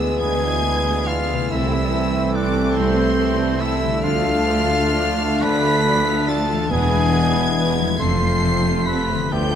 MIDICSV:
0, 0, Header, 1, 13, 480
1, 0, Start_track
1, 0, Key_signature, 0, "minor"
1, 0, Tempo, 872093
1, 833, Time_signature, 6, 3, 24, 8
1, 834, Tempo, 840336
1, 2274, Tempo, 914634
1, 3234, Tempo, 847458
1, 4194, Tempo, 879765
1, 5281, End_track
2, 0, Start_track
2, 0, Title_t, "Violin section"
2, 0, Program_c, 0, 48
2, 0, Note_on_c, 0, 88, 113
2, 97, Note_off_c, 0, 88, 0
2, 109, Note_on_c, 0, 92, 122
2, 581, Note_off_c, 0, 92, 0
2, 588, Note_on_c, 0, 89, 102
2, 826, Note_on_c, 0, 88, 100
2, 831, Note_off_c, 0, 89, 0
2, 1308, Note_on_c, 0, 86, 107
2, 1311, Note_off_c, 0, 88, 0
2, 1543, Note_off_c, 0, 86, 0
2, 1544, Note_on_c, 0, 84, 113
2, 2021, Note_off_c, 0, 84, 0
2, 2026, Note_on_c, 0, 88, 109
2, 2273, Note_on_c, 0, 89, 124
2, 2274, Note_off_c, 0, 88, 0
2, 2989, Note_off_c, 0, 89, 0
2, 3000, Note_on_c, 0, 95, 127
2, 3472, Note_off_c, 0, 95, 0
2, 3474, Note_on_c, 0, 93, 102
2, 3707, Note_on_c, 0, 92, 125
2, 3712, Note_off_c, 0, 93, 0
2, 4414, Note_off_c, 0, 92, 0
2, 4430, Note_on_c, 0, 96, 122
2, 4909, Note_off_c, 0, 96, 0
2, 4911, Note_on_c, 0, 95, 105
2, 5149, Note_on_c, 0, 91, 123
2, 5152, Note_off_c, 0, 95, 0
2, 5281, Note_off_c, 0, 91, 0
2, 5281, End_track
3, 0, Start_track
3, 0, Title_t, "Flute"
3, 0, Program_c, 1, 73
3, 109, Note_on_c, 1, 80, 102
3, 587, Note_on_c, 1, 77, 99
3, 595, Note_off_c, 1, 80, 0
3, 827, Note_off_c, 1, 77, 0
3, 831, Note_on_c, 1, 76, 91
3, 928, Note_on_c, 1, 79, 83
3, 933, Note_off_c, 1, 76, 0
3, 953, Note_on_c, 1, 76, 91
3, 959, Note_off_c, 1, 79, 0
3, 1025, Note_on_c, 1, 74, 83
3, 1030, Note_off_c, 1, 76, 0
3, 1050, Note_on_c, 1, 76, 91
3, 1056, Note_off_c, 1, 74, 0
3, 1303, Note_off_c, 1, 76, 0
3, 1307, Note_on_c, 1, 74, 91
3, 1550, Note_on_c, 1, 72, 100
3, 1559, Note_off_c, 1, 74, 0
3, 2027, Note_on_c, 1, 76, 102
3, 2036, Note_off_c, 1, 72, 0
3, 2272, Note_on_c, 1, 77, 115
3, 2280, Note_off_c, 1, 76, 0
3, 3003, Note_on_c, 1, 83, 127
3, 3011, Note_off_c, 1, 77, 0
3, 3472, Note_off_c, 1, 83, 0
3, 3475, Note_on_c, 1, 81, 97
3, 3713, Note_on_c, 1, 80, 107
3, 3722, Note_off_c, 1, 81, 0
3, 4281, Note_off_c, 1, 80, 0
3, 4430, Note_on_c, 1, 84, 110
3, 4903, Note_on_c, 1, 83, 95
3, 4911, Note_off_c, 1, 84, 0
3, 5153, Note_on_c, 1, 79, 107
3, 5161, Note_off_c, 1, 83, 0
3, 5281, Note_off_c, 1, 79, 0
3, 5281, End_track
4, 0, Start_track
4, 0, Title_t, "Violin section"
4, 0, Program_c, 2, 48
4, 0, Note_on_c, 2, 64, 61
4, 0, Note_on_c, 2, 68, 64
4, 111, Note_off_c, 2, 64, 0
4, 111, Note_on_c, 2, 71, 70
4, 112, Note_off_c, 2, 68, 0
4, 114, Note_on_c, 2, 62, 70
4, 222, Note_on_c, 2, 64, 63
4, 225, Note_on_c, 2, 68, 62
4, 229, Note_off_c, 2, 71, 0
4, 231, Note_off_c, 2, 62, 0
4, 346, Note_off_c, 2, 64, 0
4, 347, Note_off_c, 2, 68, 0
4, 352, Note_on_c, 2, 62, 66
4, 353, Note_on_c, 2, 71, 65
4, 463, Note_off_c, 2, 62, 0
4, 464, Note_off_c, 2, 71, 0
4, 474, Note_on_c, 2, 68, 62
4, 475, Note_on_c, 2, 64, 64
4, 591, Note_on_c, 2, 71, 68
4, 594, Note_off_c, 2, 68, 0
4, 594, Note_on_c, 2, 62, 69
4, 595, Note_off_c, 2, 64, 0
4, 713, Note_off_c, 2, 71, 0
4, 714, Note_off_c, 2, 62, 0
4, 718, Note_on_c, 2, 68, 66
4, 721, Note_on_c, 2, 64, 64
4, 836, Note_off_c, 2, 68, 0
4, 837, Note_off_c, 2, 64, 0
4, 839, Note_on_c, 2, 60, 67
4, 839, Note_on_c, 2, 69, 71
4, 950, Note_off_c, 2, 60, 0
4, 950, Note_off_c, 2, 69, 0
4, 963, Note_on_c, 2, 72, 63
4, 967, Note_on_c, 2, 64, 65
4, 1080, Note_off_c, 2, 72, 0
4, 1082, Note_off_c, 2, 64, 0
4, 1084, Note_on_c, 2, 69, 72
4, 1087, Note_on_c, 2, 60, 73
4, 1200, Note_off_c, 2, 69, 0
4, 1201, Note_off_c, 2, 60, 0
4, 1202, Note_on_c, 2, 72, 64
4, 1203, Note_on_c, 2, 64, 67
4, 1317, Note_off_c, 2, 72, 0
4, 1318, Note_off_c, 2, 64, 0
4, 1318, Note_on_c, 2, 69, 68
4, 1320, Note_on_c, 2, 60, 70
4, 1426, Note_off_c, 2, 69, 0
4, 1427, Note_off_c, 2, 60, 0
4, 1441, Note_on_c, 2, 64, 64
4, 1442, Note_on_c, 2, 72, 67
4, 1553, Note_on_c, 2, 60, 70
4, 1553, Note_on_c, 2, 69, 77
4, 1555, Note_off_c, 2, 64, 0
4, 1556, Note_off_c, 2, 72, 0
4, 1670, Note_off_c, 2, 60, 0
4, 1670, Note_off_c, 2, 69, 0
4, 1673, Note_on_c, 2, 72, 67
4, 1674, Note_on_c, 2, 64, 64
4, 1789, Note_off_c, 2, 64, 0
4, 1789, Note_off_c, 2, 72, 0
4, 1795, Note_on_c, 2, 60, 69
4, 1795, Note_on_c, 2, 69, 66
4, 1901, Note_off_c, 2, 60, 0
4, 1901, Note_off_c, 2, 69, 0
4, 1907, Note_on_c, 2, 64, 69
4, 1908, Note_on_c, 2, 72, 68
4, 2026, Note_off_c, 2, 64, 0
4, 2026, Note_on_c, 2, 60, 74
4, 2027, Note_off_c, 2, 72, 0
4, 2029, Note_on_c, 2, 69, 75
4, 2148, Note_off_c, 2, 60, 0
4, 2149, Note_on_c, 2, 64, 69
4, 2149, Note_on_c, 2, 72, 71
4, 2150, Note_off_c, 2, 69, 0
4, 2264, Note_on_c, 2, 65, 73
4, 2264, Note_on_c, 2, 74, 74
4, 2274, Note_off_c, 2, 64, 0
4, 2274, Note_off_c, 2, 72, 0
4, 2379, Note_off_c, 2, 65, 0
4, 2379, Note_off_c, 2, 74, 0
4, 2387, Note_on_c, 2, 77, 67
4, 2389, Note_on_c, 2, 69, 67
4, 2505, Note_on_c, 2, 74, 77
4, 2506, Note_on_c, 2, 65, 75
4, 2511, Note_off_c, 2, 77, 0
4, 2512, Note_off_c, 2, 69, 0
4, 2633, Note_off_c, 2, 65, 0
4, 2633, Note_off_c, 2, 74, 0
4, 2637, Note_on_c, 2, 77, 74
4, 2638, Note_on_c, 2, 69, 74
4, 2758, Note_on_c, 2, 74, 66
4, 2759, Note_on_c, 2, 65, 69
4, 2762, Note_off_c, 2, 69, 0
4, 2762, Note_off_c, 2, 77, 0
4, 2874, Note_off_c, 2, 74, 0
4, 2875, Note_off_c, 2, 65, 0
4, 2877, Note_on_c, 2, 77, 69
4, 2879, Note_on_c, 2, 69, 70
4, 2999, Note_on_c, 2, 65, 81
4, 3000, Note_off_c, 2, 77, 0
4, 3000, Note_on_c, 2, 74, 80
4, 3001, Note_off_c, 2, 69, 0
4, 3116, Note_on_c, 2, 69, 70
4, 3117, Note_off_c, 2, 65, 0
4, 3117, Note_on_c, 2, 77, 69
4, 3118, Note_off_c, 2, 74, 0
4, 3231, Note_off_c, 2, 69, 0
4, 3232, Note_off_c, 2, 77, 0
4, 3234, Note_on_c, 2, 65, 69
4, 3235, Note_on_c, 2, 74, 67
4, 3346, Note_off_c, 2, 65, 0
4, 3347, Note_off_c, 2, 74, 0
4, 3353, Note_on_c, 2, 69, 66
4, 3357, Note_on_c, 2, 77, 70
4, 3470, Note_on_c, 2, 65, 73
4, 3474, Note_off_c, 2, 69, 0
4, 3474, Note_on_c, 2, 74, 68
4, 3476, Note_off_c, 2, 77, 0
4, 3590, Note_on_c, 2, 69, 66
4, 3592, Note_off_c, 2, 65, 0
4, 3594, Note_off_c, 2, 74, 0
4, 3594, Note_on_c, 2, 77, 69
4, 3711, Note_off_c, 2, 69, 0
4, 3712, Note_off_c, 2, 77, 0
4, 3714, Note_on_c, 2, 68, 73
4, 3714, Note_on_c, 2, 71, 72
4, 3823, Note_off_c, 2, 71, 0
4, 3824, Note_off_c, 2, 68, 0
4, 3829, Note_on_c, 2, 64, 64
4, 3831, Note_on_c, 2, 68, 65
4, 3940, Note_off_c, 2, 68, 0
4, 3947, Note_on_c, 2, 68, 72
4, 3949, Note_off_c, 2, 64, 0
4, 3949, Note_on_c, 2, 71, 74
4, 4065, Note_off_c, 2, 68, 0
4, 4070, Note_off_c, 2, 71, 0
4, 4072, Note_on_c, 2, 68, 65
4, 4073, Note_on_c, 2, 64, 68
4, 4185, Note_off_c, 2, 68, 0
4, 4192, Note_on_c, 2, 68, 72
4, 4193, Note_on_c, 2, 71, 68
4, 4194, Note_off_c, 2, 64, 0
4, 4303, Note_off_c, 2, 68, 0
4, 4304, Note_off_c, 2, 71, 0
4, 4311, Note_on_c, 2, 64, 64
4, 4314, Note_on_c, 2, 68, 65
4, 4431, Note_off_c, 2, 64, 0
4, 4432, Note_off_c, 2, 68, 0
4, 4433, Note_on_c, 2, 69, 73
4, 4435, Note_off_c, 2, 69, 0
4, 4435, Note_on_c, 2, 69, 73
4, 4544, Note_off_c, 2, 69, 0
4, 4546, Note_on_c, 2, 65, 63
4, 4547, Note_on_c, 2, 72, 64
4, 4662, Note_on_c, 2, 69, 67
4, 4663, Note_off_c, 2, 69, 0
4, 4663, Note_on_c, 2, 69, 62
4, 4667, Note_off_c, 2, 65, 0
4, 4668, Note_off_c, 2, 72, 0
4, 4786, Note_off_c, 2, 69, 0
4, 4786, Note_on_c, 2, 72, 63
4, 4787, Note_on_c, 2, 65, 66
4, 4906, Note_on_c, 2, 69, 65
4, 4907, Note_off_c, 2, 69, 0
4, 4907, Note_on_c, 2, 69, 72
4, 4908, Note_off_c, 2, 65, 0
4, 4908, Note_off_c, 2, 72, 0
4, 5019, Note_on_c, 2, 72, 64
4, 5020, Note_off_c, 2, 69, 0
4, 5020, Note_on_c, 2, 65, 64
4, 5139, Note_on_c, 2, 62, 67
4, 5142, Note_on_c, 2, 71, 67
4, 5146, Note_off_c, 2, 65, 0
4, 5146, Note_off_c, 2, 72, 0
4, 5258, Note_off_c, 2, 62, 0
4, 5259, Note_off_c, 2, 71, 0
4, 5260, Note_on_c, 2, 69, 58
4, 5262, Note_on_c, 2, 65, 61
4, 5281, Note_off_c, 2, 65, 0
4, 5281, Note_off_c, 2, 69, 0
4, 5281, End_track
5, 0, Start_track
5, 0, Title_t, "Cor anglais"
5, 0, Program_c, 3, 69
5, 112, Note_on_c, 3, 68, 92
5, 587, Note_on_c, 3, 65, 92
5, 595, Note_off_c, 3, 68, 0
5, 828, Note_off_c, 3, 65, 0
5, 832, Note_on_c, 3, 64, 84
5, 1310, Note_on_c, 3, 62, 89
5, 1318, Note_off_c, 3, 64, 0
5, 1541, Note_off_c, 3, 62, 0
5, 1545, Note_on_c, 3, 60, 92
5, 2029, Note_on_c, 3, 64, 99
5, 2037, Note_off_c, 3, 60, 0
5, 2271, Note_off_c, 3, 64, 0
5, 2274, Note_on_c, 3, 65, 107
5, 3001, Note_on_c, 3, 71, 107
5, 3009, Note_off_c, 3, 65, 0
5, 3471, Note_on_c, 3, 69, 85
5, 3480, Note_off_c, 3, 71, 0
5, 3711, Note_off_c, 3, 69, 0
5, 3715, Note_on_c, 3, 68, 108
5, 4271, Note_off_c, 3, 68, 0
5, 4428, Note_on_c, 3, 72, 95
5, 4911, Note_on_c, 3, 71, 93
5, 4920, Note_off_c, 3, 72, 0
5, 5155, Note_on_c, 3, 67, 100
5, 5163, Note_off_c, 3, 71, 0
5, 5281, Note_off_c, 3, 67, 0
5, 5281, End_track
6, 0, Start_track
6, 0, Title_t, "French horn section"
6, 0, Program_c, 4, 60
6, 0, Note_on_c, 4, 59, 81
6, 0, Note_on_c, 4, 71, 75
6, 814, Note_off_c, 4, 59, 0
6, 814, Note_off_c, 4, 71, 0
6, 843, Note_on_c, 4, 60, 81
6, 843, Note_on_c, 4, 69, 85
6, 2168, Note_off_c, 4, 60, 0
6, 2168, Note_off_c, 4, 69, 0
6, 2265, Note_on_c, 4, 69, 90
6, 2272, Note_on_c, 4, 62, 96
6, 3686, Note_off_c, 4, 69, 0
6, 3689, Note_off_c, 4, 62, 0
6, 3718, Note_on_c, 4, 62, 87
6, 3718, Note_on_c, 4, 64, 88
6, 4420, Note_off_c, 4, 62, 0
6, 4420, Note_off_c, 4, 64, 0
6, 4439, Note_on_c, 4, 60, 87
6, 4440, Note_on_c, 4, 65, 86
6, 5140, Note_off_c, 4, 65, 0
6, 5145, Note_on_c, 4, 59, 78
6, 5146, Note_on_c, 4, 65, 81
6, 5155, Note_off_c, 4, 60, 0
6, 5281, Note_off_c, 4, 59, 0
6, 5281, Note_off_c, 4, 65, 0
6, 5281, End_track
7, 0, Start_track
7, 0, Title_t, "Clarinet"
7, 0, Program_c, 5, 71
7, 0, Note_on_c, 5, 59, 75
7, 663, Note_off_c, 5, 59, 0
7, 830, Note_on_c, 5, 60, 79
7, 2249, Note_off_c, 5, 60, 0
7, 2274, Note_on_c, 5, 62, 83
7, 4260, Note_off_c, 5, 62, 0
7, 4433, Note_on_c, 5, 65, 85
7, 5130, Note_off_c, 5, 65, 0
7, 5145, Note_on_c, 5, 65, 79
7, 5281, Note_off_c, 5, 65, 0
7, 5281, End_track
8, 0, Start_track
8, 0, Title_t, "Harp"
8, 0, Program_c, 6, 46
8, 0, Note_on_c, 6, 50, 68
8, 0, Note_on_c, 6, 59, 57
8, 0, Note_on_c, 6, 64, 53
8, 0, Note_on_c, 6, 68, 53
8, 731, Note_on_c, 6, 48, 72
8, 755, Note_on_c, 6, 57, 59
8, 773, Note_off_c, 6, 64, 0
8, 780, Note_on_c, 6, 64, 58
8, 802, Note_off_c, 6, 50, 0
8, 806, Note_on_c, 6, 69, 56
8, 814, Note_off_c, 6, 59, 0
8, 840, Note_off_c, 6, 68, 0
8, 2163, Note_on_c, 6, 50, 78
8, 2181, Note_off_c, 6, 57, 0
8, 2188, Note_on_c, 6, 57, 61
8, 2214, Note_on_c, 6, 62, 62
8, 2241, Note_off_c, 6, 48, 0
8, 2241, Note_on_c, 6, 74, 64
8, 2266, Note_off_c, 6, 64, 0
8, 2971, Note_off_c, 6, 69, 0
8, 3606, Note_on_c, 6, 52, 74
8, 3634, Note_on_c, 6, 56, 61
8, 3651, Note_off_c, 6, 62, 0
8, 3658, Note_on_c, 6, 62, 61
8, 3677, Note_off_c, 6, 50, 0
8, 3684, Note_on_c, 6, 71, 61
8, 3689, Note_off_c, 6, 57, 0
8, 4330, Note_on_c, 6, 53, 76
8, 4354, Note_on_c, 6, 57, 65
8, 4367, Note_off_c, 6, 74, 0
8, 4379, Note_on_c, 6, 65, 61
8, 4399, Note_off_c, 6, 52, 0
8, 4404, Note_on_c, 6, 69, 63
8, 4412, Note_off_c, 6, 56, 0
8, 4424, Note_off_c, 6, 62, 0
8, 4436, Note_off_c, 6, 71, 0
8, 5049, Note_on_c, 6, 50, 67
8, 5074, Note_on_c, 6, 59, 57
8, 5091, Note_off_c, 6, 65, 0
8, 5097, Note_on_c, 6, 65, 52
8, 5116, Note_off_c, 6, 69, 0
8, 5123, Note_on_c, 6, 69, 52
8, 5281, Note_off_c, 6, 50, 0
8, 5281, Note_off_c, 6, 53, 0
8, 5281, Note_off_c, 6, 57, 0
8, 5281, Note_off_c, 6, 59, 0
8, 5281, Note_off_c, 6, 65, 0
8, 5281, Note_off_c, 6, 69, 0
8, 5281, End_track
9, 0, Start_track
9, 0, Title_t, "Viola section"
9, 0, Program_c, 7, 48
9, 0, Note_on_c, 7, 56, 63
9, 0, Note_on_c, 7, 62, 64
9, 113, Note_off_c, 7, 56, 0
9, 113, Note_off_c, 7, 62, 0
9, 114, Note_on_c, 7, 59, 68
9, 117, Note_on_c, 7, 52, 73
9, 231, Note_off_c, 7, 59, 0
9, 233, Note_off_c, 7, 52, 0
9, 235, Note_on_c, 7, 56, 63
9, 235, Note_on_c, 7, 62, 61
9, 352, Note_off_c, 7, 56, 0
9, 352, Note_off_c, 7, 62, 0
9, 357, Note_on_c, 7, 52, 66
9, 357, Note_on_c, 7, 59, 63
9, 466, Note_off_c, 7, 52, 0
9, 466, Note_off_c, 7, 59, 0
9, 476, Note_on_c, 7, 56, 66
9, 476, Note_on_c, 7, 62, 65
9, 593, Note_on_c, 7, 52, 69
9, 595, Note_off_c, 7, 56, 0
9, 595, Note_off_c, 7, 62, 0
9, 596, Note_on_c, 7, 59, 68
9, 714, Note_off_c, 7, 52, 0
9, 715, Note_off_c, 7, 59, 0
9, 721, Note_on_c, 7, 56, 64
9, 722, Note_on_c, 7, 62, 64
9, 831, Note_on_c, 7, 64, 72
9, 834, Note_on_c, 7, 60, 74
9, 837, Note_off_c, 7, 56, 0
9, 837, Note_off_c, 7, 62, 0
9, 946, Note_off_c, 7, 64, 0
9, 948, Note_off_c, 7, 60, 0
9, 959, Note_on_c, 7, 57, 65
9, 961, Note_on_c, 7, 60, 67
9, 1074, Note_off_c, 7, 60, 0
9, 1078, Note_off_c, 7, 57, 0
9, 1081, Note_on_c, 7, 60, 65
9, 1082, Note_on_c, 7, 64, 67
9, 1189, Note_off_c, 7, 60, 0
9, 1195, Note_on_c, 7, 57, 69
9, 1196, Note_on_c, 7, 60, 70
9, 1198, Note_off_c, 7, 64, 0
9, 1303, Note_off_c, 7, 60, 0
9, 1309, Note_on_c, 7, 60, 67
9, 1309, Note_on_c, 7, 64, 70
9, 1314, Note_off_c, 7, 57, 0
9, 1422, Note_off_c, 7, 60, 0
9, 1422, Note_off_c, 7, 64, 0
9, 1432, Note_on_c, 7, 57, 67
9, 1433, Note_on_c, 7, 60, 69
9, 1539, Note_off_c, 7, 60, 0
9, 1546, Note_on_c, 7, 60, 76
9, 1547, Note_on_c, 7, 64, 78
9, 1550, Note_off_c, 7, 57, 0
9, 1656, Note_off_c, 7, 60, 0
9, 1663, Note_on_c, 7, 57, 67
9, 1663, Note_on_c, 7, 60, 69
9, 1667, Note_off_c, 7, 64, 0
9, 1778, Note_off_c, 7, 60, 0
9, 1783, Note_off_c, 7, 57, 0
9, 1785, Note_on_c, 7, 60, 67
9, 1785, Note_on_c, 7, 64, 69
9, 1892, Note_off_c, 7, 60, 0
9, 1896, Note_off_c, 7, 64, 0
9, 1897, Note_on_c, 7, 57, 73
9, 1899, Note_on_c, 7, 60, 70
9, 2012, Note_off_c, 7, 60, 0
9, 2019, Note_on_c, 7, 60, 71
9, 2021, Note_off_c, 7, 57, 0
9, 2022, Note_on_c, 7, 64, 69
9, 2131, Note_off_c, 7, 60, 0
9, 2138, Note_on_c, 7, 57, 70
9, 2138, Note_on_c, 7, 60, 68
9, 2146, Note_off_c, 7, 64, 0
9, 2267, Note_on_c, 7, 53, 80
9, 2267, Note_on_c, 7, 62, 72
9, 2269, Note_off_c, 7, 57, 0
9, 2269, Note_off_c, 7, 60, 0
9, 2380, Note_off_c, 7, 53, 0
9, 2380, Note_off_c, 7, 62, 0
9, 2389, Note_on_c, 7, 57, 71
9, 2391, Note_on_c, 7, 65, 72
9, 2505, Note_on_c, 7, 53, 70
9, 2506, Note_on_c, 7, 62, 67
9, 2512, Note_off_c, 7, 57, 0
9, 2513, Note_off_c, 7, 65, 0
9, 2633, Note_off_c, 7, 53, 0
9, 2633, Note_off_c, 7, 62, 0
9, 2634, Note_on_c, 7, 57, 71
9, 2634, Note_on_c, 7, 65, 75
9, 2757, Note_on_c, 7, 53, 72
9, 2757, Note_on_c, 7, 62, 75
9, 2760, Note_off_c, 7, 57, 0
9, 2760, Note_off_c, 7, 65, 0
9, 2874, Note_off_c, 7, 53, 0
9, 2874, Note_off_c, 7, 62, 0
9, 2884, Note_on_c, 7, 57, 71
9, 2884, Note_on_c, 7, 65, 70
9, 3003, Note_off_c, 7, 57, 0
9, 3003, Note_off_c, 7, 65, 0
9, 3003, Note_on_c, 7, 53, 75
9, 3004, Note_on_c, 7, 62, 80
9, 3118, Note_on_c, 7, 57, 70
9, 3119, Note_off_c, 7, 53, 0
9, 3120, Note_off_c, 7, 62, 0
9, 3121, Note_on_c, 7, 65, 72
9, 3232, Note_off_c, 7, 57, 0
9, 3232, Note_on_c, 7, 53, 71
9, 3232, Note_on_c, 7, 62, 70
9, 3234, Note_off_c, 7, 65, 0
9, 3345, Note_off_c, 7, 53, 0
9, 3345, Note_off_c, 7, 62, 0
9, 3358, Note_on_c, 7, 57, 67
9, 3358, Note_on_c, 7, 65, 67
9, 3477, Note_off_c, 7, 57, 0
9, 3477, Note_off_c, 7, 65, 0
9, 3477, Note_on_c, 7, 53, 73
9, 3478, Note_on_c, 7, 62, 67
9, 3596, Note_off_c, 7, 53, 0
9, 3596, Note_off_c, 7, 62, 0
9, 3596, Note_on_c, 7, 57, 69
9, 3597, Note_on_c, 7, 65, 70
9, 3714, Note_off_c, 7, 57, 0
9, 3714, Note_off_c, 7, 65, 0
9, 3715, Note_on_c, 7, 62, 82
9, 3716, Note_on_c, 7, 59, 71
9, 3823, Note_off_c, 7, 59, 0
9, 3824, Note_off_c, 7, 62, 0
9, 3830, Note_on_c, 7, 59, 71
9, 3831, Note_on_c, 7, 56, 67
9, 3946, Note_off_c, 7, 59, 0
9, 3950, Note_off_c, 7, 56, 0
9, 3953, Note_on_c, 7, 59, 66
9, 3954, Note_on_c, 7, 62, 67
9, 4068, Note_off_c, 7, 59, 0
9, 4072, Note_off_c, 7, 62, 0
9, 4075, Note_on_c, 7, 59, 68
9, 4076, Note_on_c, 7, 56, 71
9, 4188, Note_off_c, 7, 59, 0
9, 4193, Note_on_c, 7, 62, 67
9, 4194, Note_on_c, 7, 59, 68
9, 4196, Note_off_c, 7, 56, 0
9, 4304, Note_off_c, 7, 59, 0
9, 4304, Note_off_c, 7, 62, 0
9, 4311, Note_on_c, 7, 56, 66
9, 4311, Note_on_c, 7, 59, 68
9, 4430, Note_off_c, 7, 56, 0
9, 4431, Note_off_c, 7, 59, 0
9, 4431, Note_on_c, 7, 53, 74
9, 4431, Note_on_c, 7, 60, 71
9, 4542, Note_off_c, 7, 53, 0
9, 4542, Note_off_c, 7, 60, 0
9, 4548, Note_on_c, 7, 57, 65
9, 4552, Note_off_c, 7, 57, 0
9, 4552, Note_on_c, 7, 57, 60
9, 4670, Note_off_c, 7, 57, 0
9, 4671, Note_on_c, 7, 53, 65
9, 4674, Note_on_c, 7, 60, 63
9, 4790, Note_off_c, 7, 53, 0
9, 4791, Note_off_c, 7, 60, 0
9, 4794, Note_on_c, 7, 57, 64
9, 4795, Note_off_c, 7, 57, 0
9, 4795, Note_on_c, 7, 57, 65
9, 4912, Note_off_c, 7, 57, 0
9, 4916, Note_on_c, 7, 53, 69
9, 4916, Note_on_c, 7, 60, 65
9, 5025, Note_off_c, 7, 53, 0
9, 5025, Note_off_c, 7, 60, 0
9, 5030, Note_on_c, 7, 57, 61
9, 5031, Note_off_c, 7, 57, 0
9, 5031, Note_on_c, 7, 57, 65
9, 5152, Note_off_c, 7, 57, 0
9, 5158, Note_on_c, 7, 59, 74
9, 5160, Note_on_c, 7, 53, 73
9, 5268, Note_off_c, 7, 59, 0
9, 5269, Note_off_c, 7, 53, 0
9, 5281, End_track
10, 0, Start_track
10, 0, Title_t, "Bassoon"
10, 0, Program_c, 8, 70
10, 0, Note_on_c, 8, 56, 75
10, 659, Note_off_c, 8, 56, 0
10, 832, Note_on_c, 8, 57, 84
10, 3690, Note_off_c, 8, 57, 0
10, 3710, Note_on_c, 8, 59, 78
10, 4269, Note_off_c, 8, 59, 0
10, 4429, Note_on_c, 8, 57, 81
10, 5128, Note_off_c, 8, 57, 0
10, 5157, Note_on_c, 8, 57, 84
10, 5281, Note_off_c, 8, 57, 0
10, 5281, End_track
11, 0, Start_track
11, 0, Title_t, "Trombone section"
11, 0, Program_c, 10, 61
11, 0, Note_on_c, 10, 52, 90
11, 0, Note_on_c, 10, 56, 80
11, 738, Note_off_c, 10, 56, 0
11, 831, Note_on_c, 10, 57, 94
11, 2250, Note_off_c, 10, 57, 0
11, 2251, Note_off_c, 10, 52, 0
11, 2271, Note_on_c, 10, 50, 97
11, 2273, Note_on_c, 10, 57, 93
11, 3689, Note_off_c, 10, 50, 0
11, 3690, Note_off_c, 10, 57, 0
11, 3706, Note_on_c, 10, 47, 98
11, 3706, Note_on_c, 10, 59, 96
11, 4428, Note_off_c, 10, 47, 0
11, 4428, Note_off_c, 10, 59, 0
11, 4428, Note_on_c, 10, 57, 83
11, 4429, Note_on_c, 10, 48, 81
11, 5136, Note_off_c, 10, 48, 0
11, 5142, Note_off_c, 10, 57, 0
11, 5148, Note_on_c, 10, 50, 87
11, 5149, Note_on_c, 10, 57, 85
11, 5281, Note_off_c, 10, 50, 0
11, 5281, Note_off_c, 10, 57, 0
11, 5281, End_track
12, 0, Start_track
12, 0, Title_t, "Cello section"
12, 0, Program_c, 11, 48
12, 107, Note_on_c, 11, 38, 89
12, 746, Note_off_c, 11, 38, 0
12, 830, Note_on_c, 11, 36, 99
12, 1465, Note_off_c, 11, 36, 0
12, 1545, Note_on_c, 11, 36, 105
12, 2182, Note_off_c, 11, 36, 0
12, 2270, Note_on_c, 11, 38, 103
12, 2918, Note_off_c, 11, 38, 0
12, 3001, Note_on_c, 11, 38, 99
12, 3627, Note_off_c, 11, 38, 0
12, 3707, Note_on_c, 11, 40, 97
12, 4344, Note_off_c, 11, 40, 0
12, 4432, Note_on_c, 11, 41, 98
12, 5066, Note_off_c, 11, 41, 0
12, 5150, Note_on_c, 11, 38, 90
12, 5281, Note_off_c, 11, 38, 0
12, 5281, End_track
13, 0, Start_track
13, 0, Title_t, "Double bass section"
13, 0, Program_c, 12, 48
13, 109, Note_on_c, 12, 38, 82
13, 747, Note_off_c, 12, 38, 0
13, 828, Note_on_c, 12, 36, 90
13, 1464, Note_off_c, 12, 36, 0
13, 1549, Note_on_c, 12, 36, 88
13, 2184, Note_off_c, 12, 36, 0
13, 2269, Note_on_c, 12, 38, 90
13, 2918, Note_off_c, 12, 38, 0
13, 2998, Note_on_c, 12, 38, 90
13, 3625, Note_off_c, 12, 38, 0
13, 3708, Note_on_c, 12, 28, 95
13, 4345, Note_off_c, 12, 28, 0
13, 4428, Note_on_c, 12, 29, 86
13, 5064, Note_off_c, 12, 29, 0
13, 5144, Note_on_c, 12, 38, 86
13, 5281, Note_off_c, 12, 38, 0
13, 5281, End_track
0, 0, End_of_file